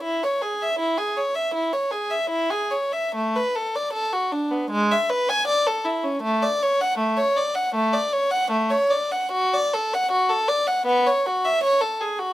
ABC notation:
X:1
M:4/4
L:1/16
Q:1/4=78
K:A
V:1 name="Violin"
E c G e E G c e E c G e E G c e | A, B A d A F D B, G, e B g d A E C | A, d c f A, c d f A, d c f A, c d f | F d A f F A d f B, c F e c A G F |]